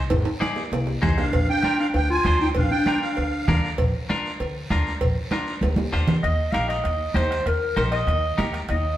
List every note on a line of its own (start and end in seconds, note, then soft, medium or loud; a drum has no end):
0.10 0.23 G#1 loud
0.10 bombo low medium
0.10 cowbell loud
0.10 high timbale medium
0.10 long guiro medium
0.25 high timbale medium
0.40 0.62 D#4 medium
0.40 0.62 G#4 medium
0.40 0.62 D5 loud
0.40 bombo rim medium
0.40 high conga medium
0.40 high timbale medium
0.40 short guiro medium
0.56 low timbale medium
0.56 short guiro medium
0.72 0.96 C2 medium
0.72 cowbell medium
0.72 low timbale medium
0.72 long guiro medium
0.87 low timbale medium
1.02 1.27 C2 medium
1.02 1.24 D#4 medium
1.02 1.24 G#4 medium
1.02 1.24 C5 medium
1.02 bombo low medium
1.02 bombo rim medium
1.02 high conga medium
1.02 low conga medium
1.02 low timbale medium
1.02 short guiro medium
1.18 1.47 D4 medium
1.18 1.47 F5 medium
1.18 bombo rim medium
1.18 low timbale loud
1.18 short guiro medium
1.33 1.45 A#1 medium
1.33 bombo low medium
1.33 cowbell loud
1.33 long guiro medium
1.49 1.77 D4 medium
1.49 1.77 G5 loud
1.63 1.85 D4 medium
1.63 1.86 F4 medium
1.63 1.86 A#4 medium
1.63 bombo rim medium
1.63 high conga medium
1.63 short guiro medium
1.79 1.87 D4 medium
1.79 1.87 F5 medium
1.79 short guiro medium
1.94 2.19 D2 medium
1.94 2.08 D4 medium
1.94 2.09 G5 loud
1.94 cowbell medium
1.94 long guiro medium
2.10 2.38 F4 medium
2.10 2.39 G#5 loud
2.24 2.49 D2 medium
2.24 2.47 D4 medium
2.24 2.47 F4 medium
2.24 2.47 C5 medium
2.24 bombo low medium
2.24 bombo rim medium
2.24 high conga medium
2.24 short guiro medium
2.41 2.48 D#4 medium
2.41 2.49 G5 medium
2.41 short guiro medium
2.55 2.68 A#1 loud
2.55 2.70 D4 medium
2.55 2.71 F5 medium
2.55 bombo low medium
2.55 cowbell loud
2.55 long guiro medium
2.71 2.99 D4 medium
2.71 2.99 G5 loud
2.86 3.08 D4 medium
2.86 3.08 F4 medium
2.86 3.08 A#4 medium
2.86 bombo rim medium
2.86 high conga medium
2.86 short guiro medium
3.01 3.59 D4 medium
3.01 3.59 F5 medium
3.01 short guiro medium
3.17 3.42 D2 loud
3.17 cowbell medium
3.17 long guiro medium
3.48 3.72 D2 medium
3.48 3.69 D4 medium
3.48 3.70 F4 medium
3.48 3.70 A#4 loud
3.48 bombo low medium
3.48 bombo rim medium
3.48 high conga medium
3.48 low conga medium
3.48 low timbale medium
3.48 short guiro medium
3.64 short guiro medium
3.78 3.91 A#1 loud
3.78 bombo low loud
3.78 cowbell loud
3.78 long guiro medium
4.09 4.31 D4 medium
4.09 4.31 F4 medium
4.09 4.31 A#4 loud
4.09 bombo rim medium
4.09 high conga medium
4.09 short guiro medium
4.26 short guiro medium
4.40 4.64 D2 medium
4.40 cowbell medium
4.40 long guiro medium
4.70 4.95 D2 medium
4.70 4.92 D4 medium
4.70 4.92 F4 medium
4.70 4.92 A#4 medium
4.70 bombo low medium
4.70 bombo rim medium
4.70 high conga medium
4.70 short guiro medium
4.86 short guiro medium
5.01 5.13 A#1 loud
5.01 bombo low medium
5.01 cowbell loud
5.01 long guiro medium
5.31 5.53 D4 medium
5.31 5.53 F4 medium
5.31 5.54 A#4 medium
5.31 bombo rim medium
5.31 high conga medium
5.31 high timbale medium
5.31 short guiro medium
5.47 short guiro medium
5.61 5.87 D2 medium
5.61 cowbell medium
5.61 high conga medium
5.61 low timbale medium
5.61 long guiro medium
5.76 high conga loud
5.76 low timbale medium
5.92 6.18 D2 medium
5.92 6.14 D4 medium
5.92 6.15 F4 medium
5.92 6.15 C5 medium
5.92 bombo low medium
5.92 bombo rim medium
5.92 short guiro medium
6.08 bombo rim medium
6.08 low conga loud
6.08 low timbale medium
6.08 short guiro medium
6.22 6.48 D#2 medium
6.22 6.54 D#5 loud
6.22 bombo low medium
6.22 bombo rim medium
6.22 high conga soft
6.22 high timbale medium
6.22 long guiro medium
6.52 6.79 A#1 medium
6.52 6.76 D#4 medium
6.52 6.76 G4 medium
6.52 6.76 A#4 medium
6.52 6.68 F5 medium
6.52 bombo rim medium
6.52 high conga medium
6.52 high timbale medium
6.52 short guiro medium
6.68 7.17 D#5 loud
6.68 bombo rim medium
6.68 high timbale medium
6.68 short guiro medium
6.84 7.10 D#2 medium
6.84 bombo rim medium
6.84 high conga soft
6.84 high timbale medium
6.84 long guiro medium
7.14 7.40 D#2 medium
7.14 7.37 D#4 medium
7.14 7.37 G4 medium
7.14 7.46 C5 medium
7.14 7.37 C5 medium
7.14 bombo low medium
7.14 bombo rim medium
7.14 high conga medium
7.14 high timbale medium
7.14 low timbale medium
7.14 short guiro medium
7.31 bombo rim medium
7.31 high timbale medium
7.31 short guiro medium
7.46 7.71 D#2 medium
7.46 7.75 A#4 medium
7.46 bombo low medium
7.46 bombo rim medium
7.46 high conga soft
7.46 high timbale medium
7.46 long guiro medium
7.76 8.01 A#1 medium
7.76 7.98 D#4 medium
7.76 7.99 G4 medium
7.76 7.84 A#4 medium
7.76 7.99 C5 medium
7.76 bombo rim medium
7.76 high conga medium
7.76 high timbale medium
7.76 short guiro medium
7.92 8.50 D#5 loud
7.92 bombo rim medium
7.92 high timbale medium
7.92 short guiro medium
8.07 8.32 D#2 medium
8.07 bombo rim medium
8.07 high conga soft
8.07 high timbale medium
8.07 long guiro medium
8.38 8.63 D#2 medium
8.38 8.60 D#4 medium
8.38 8.60 G4 medium
8.38 8.60 A#4 medium
8.38 bombo low medium
8.38 bombo rim medium
8.38 high conga medium
8.38 high timbale medium
8.38 low timbale medium
8.38 short guiro medium
8.53 bombo rim medium
8.53 high timbale medium
8.53 short guiro medium
8.69 8.94 D#2 loud
8.69 8.97 D#5 medium
8.69 bombo low medium
8.69 bombo rim medium
8.69 high conga soft
8.69 high timbale medium
8.69 long guiro medium